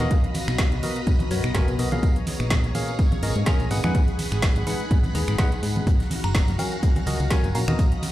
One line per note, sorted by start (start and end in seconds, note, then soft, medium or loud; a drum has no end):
0.00 0.17 B2 medium
0.00 0.17 B3 medium
0.00 0.88 C#4 medium
0.00 2.03 F#4 medium
0.00 0.17 F#4 medium
0.00 0.17 A#4 medium
0.00 0.17 D#5 medium
0.00 0.88 F5 medium
0.00 tambourine soft
0.00 high conga medium
0.11 2.03 B3 medium
0.11 2.01 D#5 medium
0.11 2.01 A#5 medium
0.11 2.01 B5 medium
0.11 kick loud
0.11 closed hi-hat medium
0.11 tambourine soft
0.24 closed hi-hat soft
0.34 open hi-hat loud
0.34 tambourine loud
0.34 high conga medium
0.48 0.65 B1 medium
0.48 finger snap medium
0.48 closed hi-hat soft
0.48 tambourine soft
0.58 kick loud
0.58 snare loud
0.58 closed hi-hat medium
0.72 0.80 B1 loud
0.72 closed hi-hat soft
0.72 tambourine soft
0.83 1.01 B2 medium
0.83 1.01 B3 medium
0.83 1.01 F#4 medium
0.83 1.01 A#4 medium
0.83 1.01 D#5 medium
0.83 open hi-hat medium
0.83 tambourine medium
0.83 high conga medium
0.96 2.71 D#5 medium
0.96 closed hi-hat soft
0.96 tambourine soft
1.07 1.16 B1 medium
1.07 kick loud
1.07 closed hi-hat medium
1.07 tambourine soft
1.19 closed hi-hat soft
1.19 tambourine soft
1.19 high conga loud
1.31 1.40 F#2 medium
1.31 1.43 B2 medium
1.31 1.43 B3 medium
1.31 1.43 F#4 medium
1.31 1.43 A#4 medium
1.31 1.43 C#5 medium
1.31 open hi-hat loud
1.31 tambourine medium
1.44 1.52 B1 loud
1.44 finger snap medium
1.44 closed hi-hat soft
1.44 tambourine soft
1.55 1.64 F#1 medium
1.55 1.73 B2 medium
1.55 1.73 B3 medium
1.55 1.73 F#4 medium
1.55 1.73 A#4 medium
1.55 1.73 G#5 loud
1.55 kick loud
1.55 snare loud
1.55 closed hi-hat medium
1.55 tambourine medium
1.55 high conga medium
1.68 1.76 B2 medium
1.68 closed hi-hat soft
1.68 tambourine soft
1.79 1.97 B1 medium
1.79 1.89 B3 medium
1.79 1.89 F#4 medium
1.79 1.89 A#4 medium
1.79 1.89 D#5 medium
1.79 open hi-hat medium
1.79 tambourine medium
1.91 2.09 A#2 medium
1.91 2.09 C#4 medium
1.91 2.09 G#4 medium
1.91 2.09 A#4 medium
1.91 2.09 F5 medium
1.91 closed hi-hat soft
1.91 tambourine soft
1.91 high conga medium
2.03 2.12 A#1 loud
2.03 4.58 C#4 medium
2.03 5.83 G#4 medium
2.03 3.69 C#5 medium
2.03 3.69 A#5 medium
2.03 kick loud
2.03 closed hi-hat medium
2.03 tambourine medium
2.16 closed hi-hat soft
2.27 open hi-hat loud
2.27 tambourine loud
2.27 high conga medium
2.40 2.57 A#1 medium
2.40 finger snap medium
2.40 closed hi-hat soft
2.40 tambourine soft
2.44 6.64 G#4 medium
2.50 kick loud
2.50 snare loud
2.50 closed hi-hat medium
2.50 tambourine medium
2.64 2.72 A#1 loud
2.64 closed hi-hat soft
2.64 tambourine soft
2.74 2.93 A#2 medium
2.74 2.93 C#4 medium
2.74 2.93 G#4 medium
2.74 2.93 A#4 medium
2.74 2.93 F5 medium
2.74 open hi-hat medium
2.74 tambourine medium
2.74 high conga medium
2.88 closed hi-hat soft
2.88 tambourine soft
2.99 kick loud
2.99 closed hi-hat medium
2.99 tambourine medium
3.12 closed hi-hat soft
3.12 tambourine soft
3.12 high conga loud
3.23 3.32 G#1 medium
3.23 3.35 A#2 medium
3.23 3.35 C#4 medium
3.23 3.35 G#4 medium
3.23 3.35 A#4 medium
3.23 3.35 D#5 medium
3.23 open hi-hat loud
3.23 tambourine medium
3.35 3.44 G#2 medium
3.35 closed hi-hat soft
3.35 tambourine soft
3.46 3.65 C#4 medium
3.46 3.65 G#4 medium
3.46 3.65 A#4 medium
3.46 3.65 A#5 loud
3.46 kick loud
3.46 snare loud
3.46 closed hi-hat medium
3.46 tambourine medium
3.46 high conga medium
3.60 3.68 A#1 loud
3.60 closed hi-hat soft
3.60 tambourine soft
3.71 3.80 G#1 loud
3.71 3.81 G#3 medium
3.71 6.64 D#4 medium
3.71 3.81 D#4 medium
3.71 3.81 G#4 medium
3.71 3.81 B4 medium
3.71 3.81 F#5 medium
3.71 5.85 F#5 medium
3.71 5.85 B5 medium
3.71 open hi-hat loud
3.71 tambourine medium
3.84 3.92 F2 medium
3.84 4.01 G#3 medium
3.84 4.01 D#4 medium
3.84 4.01 G#4 medium
3.84 4.01 B4 medium
3.84 4.01 F#5 medium
3.84 finger snap medium
3.84 closed hi-hat soft
3.84 tambourine soft
3.84 high conga loud
3.94 kick loud
3.94 closed hi-hat medium
3.94 tambourine medium
4.08 5.87 B5 medium
4.08 closed hi-hat soft
4.19 open hi-hat loud
4.19 tambourine medium
4.19 high conga medium
4.32 4.49 G#1 medium
4.32 finger snap medium
4.32 closed hi-hat soft
4.32 tambourine soft
4.42 kick loud
4.42 snare loud
4.42 closed hi-hat medium
4.42 tambourine medium
4.55 4.64 G#1 loud
4.55 closed hi-hat soft
4.55 tambourine soft
4.67 4.85 G#3 medium
4.67 4.85 D#4 medium
4.67 4.85 G#4 medium
4.67 4.85 B4 medium
4.67 4.85 F#5 medium
4.67 open hi-hat medium
4.67 tambourine medium
4.67 high conga medium
4.80 closed hi-hat soft
4.80 tambourine soft
4.91 5.00 G#1 medium
4.91 kick loud
4.91 closed hi-hat medium
4.91 tambourine medium
5.03 closed hi-hat soft
5.03 tambourine soft
5.03 high conga medium
5.15 5.24 D#2 medium
5.15 5.36 G#3 medium
5.15 5.36 D#4 medium
5.15 5.36 G#4 medium
5.15 5.36 B4 medium
5.15 5.36 A#5 medium
5.15 open hi-hat loud
5.15 tambourine loud
5.28 5.36 G#1 loud
5.28 finger snap medium
5.28 closed hi-hat soft
5.28 tambourine soft
5.38 5.51 G#3 medium
5.38 5.51 D#4 medium
5.38 5.51 G#4 medium
5.38 5.51 B4 medium
5.38 5.51 F#5 loud
5.38 kick loud
5.38 snare loud
5.38 closed hi-hat medium
5.38 tambourine medium
5.38 high conga medium
5.51 closed hi-hat soft
5.51 tambourine soft
5.63 5.81 G#2 medium
5.63 open hi-hat loud
5.63 tambourine medium
5.76 closed hi-hat soft
5.76 tambourine soft
5.76 high conga loud
5.87 5.96 F#1 loud
5.87 8.12 C#4 medium
5.87 7.77 F#4 medium
5.87 7.77 F5 medium
5.87 7.77 A#5 loud
5.87 kick loud
5.87 closed hi-hat medium
5.87 tambourine soft
6.00 snare soft
6.00 closed hi-hat soft
6.10 closed hi-hat medium
6.10 open hi-hat loud
6.10 tambourine medium
6.10 high conga medium
6.24 6.41 F#1 medium
6.24 6.37 A#5 medium
6.24 finger snap medium
6.24 tambourine soft
6.34 kick loud
6.34 snare loud
6.34 closed hi-hat medium
6.34 tambourine soft
6.42 8.12 F#4 medium
6.48 6.56 F#1 loud
6.48 snare soft
6.48 closed hi-hat soft
6.48 tambourine soft
6.52 8.12 F5 medium
6.58 6.77 F#3 medium
6.58 6.77 C#4 medium
6.58 6.77 F#4 medium
6.58 6.77 A#4 medium
6.58 6.77 F5 medium
6.58 6.74 G#5 medium
6.58 closed hi-hat medium
6.58 open hi-hat medium
6.58 tambourine medium
6.58 high conga medium
6.72 closed hi-hat soft
6.72 tambourine soft
6.83 kick loud
6.83 closed hi-hat medium
6.83 tambourine medium
6.96 closed hi-hat soft
6.96 tambourine soft
6.96 high conga medium
7.06 7.16 C#2 medium
7.06 7.19 F#3 medium
7.06 7.19 C#4 medium
7.06 7.19 F#4 medium
7.06 7.19 A#4 medium
7.06 7.19 D#5 medium
7.06 closed hi-hat medium
7.06 open hi-hat loud
7.06 tambourine medium
7.20 7.28 C#2 medium
7.20 closed hi-hat soft
7.20 tambourine soft
7.30 7.49 F#3 medium
7.30 7.49 C#4 medium
7.30 7.49 F#4 medium
7.30 7.49 A#4 medium
7.30 7.49 G#5 loud
7.30 kick loud
7.30 snare loud
7.30 closed hi-hat medium
7.30 tambourine medium
7.30 high conga medium
7.43 7.52 F#1 medium
7.43 closed hi-hat soft
7.43 tambourine soft
7.55 7.64 A#1 loud
7.55 7.65 C#4 medium
7.55 7.65 F#4 medium
7.55 7.65 A#4 medium
7.55 7.65 F5 medium
7.55 7.70 A#5 medium
7.55 closed hi-hat medium
7.55 open hi-hat medium
7.55 tambourine medium
7.68 7.76 D#2 loud
7.68 7.85 B2 medium
7.68 7.85 B3 medium
7.68 7.85 F#4 medium
7.68 7.85 A#4 medium
7.68 7.85 D#5 medium
7.68 finger snap medium
7.68 tambourine soft
7.68 high conga medium
7.79 8.12 D#5 medium
7.79 8.12 A#5 medium
7.79 8.12 B5 medium
7.79 kick loud
7.79 closed hi-hat medium
7.79 tambourine medium
7.92 closed hi-hat soft
8.03 closed hi-hat medium
8.03 open hi-hat loud
8.03 tambourine medium
8.03 high conga medium